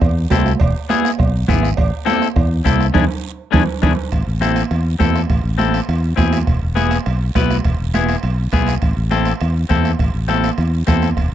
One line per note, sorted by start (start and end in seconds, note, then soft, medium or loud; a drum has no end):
0.01 0.25 E2 loud
0.01 bombo low medium
0.01 bombo rim medium
0.01 cowbell medium
0.01 high conga soft
0.01 long guiro medium
0.30 0.55 C2 medium
0.30 0.52 C4 medium
0.30 0.52 E4 medium
0.30 0.52 A4 medium
0.30 bombo low medium
0.30 bombo rim medium
0.30 cowbell medium
0.30 high conga medium
0.30 low timbale medium
0.30 short guiro medium
0.46 bombo rim medium
0.46 short guiro medium
0.60 0.72 E1 loud
0.60 bombo low medium
0.60 bombo rim medium
0.60 cowbell loud
0.60 high conga soft
0.60 long guiro medium
0.89 1.10 B3 medium
0.89 1.10 E4 medium
0.89 1.10 G#4 medium
0.89 bombo rim medium
0.89 cowbell medium
0.89 high conga medium
0.89 short guiro medium
1.05 bombo rim medium
1.05 short guiro medium
1.19 1.43 B1 loud
1.19 bombo low medium
1.19 bombo rim medium
1.19 cowbell medium
1.19 high conga soft
1.19 long guiro medium
1.48 1.72 G#1 loud
1.48 1.69 B3 medium
1.48 1.69 E4 medium
1.48 1.69 G#4 medium
1.48 bombo low medium
1.48 bombo rim medium
1.48 cowbell medium
1.48 high conga medium
1.48 low conga medium
1.48 short guiro medium
1.63 bombo rim medium
1.63 short guiro medium
1.77 1.90 A1 loud
1.77 bombo low medium
1.77 bombo rim medium
1.77 cowbell loud
1.77 high conga soft
1.77 long guiro medium
2.05 2.27 C4 medium
2.05 2.27 E4 medium
2.05 2.27 A4 loud
2.05 bombo rim medium
2.05 cowbell medium
2.05 high conga medium
2.05 short guiro medium
2.22 bombo rim medium
2.22 short guiro medium
2.36 2.60 E2 loud
2.36 bombo low medium
2.36 bombo rim medium
2.36 cowbell medium
2.36 high conga soft
2.36 long guiro medium
2.65 2.89 C2 medium
2.65 2.86 C4 medium
2.65 2.86 E4 medium
2.65 2.86 A4 medium
2.65 bombo low medium
2.65 bombo rim medium
2.65 cowbell medium
2.65 high conga medium
2.65 short guiro medium
2.80 bombo rim medium
2.80 short guiro medium
2.94 3.06 E2 loud
2.94 3.04 D4 medium
2.94 3.04 E4 medium
2.94 3.04 G#4 medium
2.94 bombo low medium
2.94 low conga medium
2.94 high timbale loud
2.94 long guiro loud
3.52 3.65 E2 loud
3.52 3.62 D4 loud
3.52 3.62 E4 loud
3.52 3.62 G#4 medium
3.52 bombo low medium
3.52 low conga loud
3.52 high timbale loud
3.52 long guiro loud
3.82 3.94 E2 loud
3.82 3.92 D4 medium
3.82 3.92 E4 medium
3.82 3.92 G#4 medium
3.82 bombo low loud
3.82 low conga medium
3.82 high timbale loud
3.82 long guiro loud
4.12 4.24 A1 medium
4.12 bombo low medium
4.12 bombo rim medium
4.12 high timbale medium
4.12 long guiro medium
4.27 4.63 A1 medium
4.41 4.62 C4 medium
4.41 4.62 E4 medium
4.41 4.62 A4 medium
4.41 bombo rim medium
4.41 high conga medium
4.41 high timbale medium
4.41 short guiro medium
4.56 bombo rim medium
4.56 high timbale medium
4.56 short guiro medium
4.70 4.95 E2 medium
4.70 bombo rim medium
4.70 high conga soft
4.70 high timbale medium
4.70 long guiro medium
4.99 5.24 E2 medium
4.99 5.20 C4 medium
4.99 5.21 E4 medium
4.99 5.21 A4 medium
4.99 bombo low medium
4.99 bombo rim medium
4.99 high conga medium
4.99 high timbale medium
4.99 low timbale medium
4.99 short guiro medium
5.16 bombo rim medium
5.16 high timbale medium
5.16 short guiro medium
5.29 5.42 A1 medium
5.29 bombo low medium
5.29 bombo rim medium
5.29 high conga soft
5.29 high timbale medium
5.29 long guiro medium
5.44 5.79 A1 medium
5.58 5.79 C4 medium
5.58 5.79 E4 medium
5.58 5.79 A4 medium
5.58 bombo rim medium
5.58 high conga medium
5.58 high timbale medium
5.58 short guiro medium
5.74 bombo rim medium
5.74 high timbale medium
5.74 short guiro medium
5.88 6.12 E2 medium
5.88 bombo rim medium
5.88 high conga soft
5.88 high timbale medium
5.88 long guiro medium
6.16 6.42 E2 medium
6.16 6.38 C4 medium
6.16 6.38 E4 medium
6.16 6.38 G#4 medium
6.16 bombo low medium
6.16 bombo rim medium
6.16 high conga medium
6.16 high timbale medium
6.16 low timbale medium
6.16 short guiro medium
6.33 bombo rim medium
6.33 high timbale medium
6.33 short guiro medium
6.47 6.59 E1 medium
6.47 bombo low medium
6.47 bombo rim medium
6.47 high conga soft
6.47 high timbale medium
6.47 long guiro medium
6.62 6.98 E1 medium
6.75 6.97 B3 medium
6.75 6.97 E4 medium
6.75 6.97 G#4 medium
6.75 bombo rim medium
6.75 high conga medium
6.75 high timbale medium
6.75 short guiro medium
6.91 bombo rim medium
6.91 high timbale medium
6.91 short guiro medium
7.06 7.30 B1 medium
7.06 bombo rim medium
7.06 high conga soft
7.06 high timbale medium
7.06 long guiro medium
7.35 7.59 B1 medium
7.35 7.56 B3 medium
7.35 7.56 E4 medium
7.35 7.57 B4 medium
7.35 bombo low medium
7.35 bombo rim medium
7.35 high conga medium
7.35 high timbale medium
7.35 low timbale medium
7.35 short guiro medium
7.50 bombo rim medium
7.50 high timbale medium
7.50 short guiro medium
7.65 7.77 E1 medium
7.65 bombo low medium
7.65 bombo rim medium
7.65 high conga soft
7.65 high timbale medium
7.65 long guiro medium
7.80 8.15 E1 medium
7.94 8.15 B3 medium
7.94 8.15 E4 medium
7.94 8.15 G#4 medium
7.94 bombo rim medium
7.94 high conga medium
7.94 high timbale medium
7.94 short guiro medium
8.09 bombo rim medium
8.09 high timbale medium
8.09 short guiro medium
8.23 8.47 B1 medium
8.23 bombo rim medium
8.23 high conga soft
8.23 high timbale medium
8.23 long guiro medium
8.52 8.76 B1 medium
8.52 8.73 B3 medium
8.52 8.74 E4 medium
8.52 8.74 G#4 medium
8.52 bombo low medium
8.52 bombo rim medium
8.52 high conga medium
8.52 high timbale medium
8.52 short guiro medium
8.67 bombo rim medium
8.67 high timbale medium
8.67 short guiro medium
8.82 8.94 A1 medium
8.82 bombo low medium
8.82 bombo rim medium
8.82 high conga soft
8.82 high timbale medium
8.82 long guiro medium
8.97 9.32 A1 medium
9.11 9.32 C4 medium
9.11 9.32 E4 medium
9.11 9.32 A4 medium
9.11 bombo rim medium
9.11 high conga medium
9.11 high timbale medium
9.11 short guiro medium
9.25 bombo rim medium
9.25 high timbale medium
9.25 short guiro medium
9.41 9.65 E2 medium
9.41 bombo rim medium
9.41 high conga soft
9.41 high timbale medium
9.41 long guiro medium
9.69 9.94 E2 medium
9.69 9.90 C4 medium
9.69 9.91 E4 medium
9.69 9.91 A4 medium
9.69 bombo low medium
9.69 bombo rim medium
9.69 high conga medium
9.69 high timbale medium
9.69 short guiro medium
9.85 bombo rim medium
9.85 high timbale medium
9.85 short guiro medium
9.99 10.11 A1 medium
9.99 bombo low medium
9.99 bombo rim medium
9.99 high conga soft
9.99 high timbale medium
9.99 long guiro medium
10.14 10.50 A1 medium
10.28 10.49 C4 medium
10.28 10.50 E4 medium
10.28 10.50 A4 medium
10.28 bombo rim medium
10.28 high conga medium
10.28 high timbale medium
10.28 short guiro medium
10.44 bombo rim medium
10.44 high timbale medium
10.44 short guiro medium
10.58 10.82 E2 medium
10.58 bombo rim medium
10.58 high conga soft
10.58 high timbale medium
10.58 long guiro medium
10.87 11.12 E2 medium
10.87 11.08 C4 medium
10.87 11.08 E4 medium
10.87 11.09 A4 medium
10.87 bombo low medium
10.87 bombo rim medium
10.87 high conga medium
10.87 high timbale medium
10.87 short guiro medium
11.02 bombo rim medium
11.02 high timbale medium
11.02 short guiro medium
11.17 11.29 E1 loud
11.17 bombo low medium
11.17 bombo rim medium
11.17 high conga soft
11.17 high timbale medium
11.17 long guiro medium